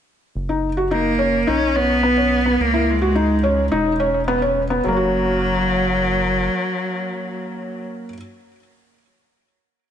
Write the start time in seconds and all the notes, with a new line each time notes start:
0.35 F#1
0.49 D#4
0.77 F#4
0.91 A#3 D#4
1.19 C#4
1.47 B1 C#4 D#4
1.76 B3 C#4
2.03 B3
2.17 C#4
2.46 B3
2.60 C#2 A#3
2.74 E4
2.89 G#3
3.02 F#4
3.15 D#4
3.43 C#4
3.72 E1 D#4
4.00 C#4
4.28 B3
4.42 C#4
4.70 B3
4.84 F#1 F#3 A#3
4.92 C#4 F#4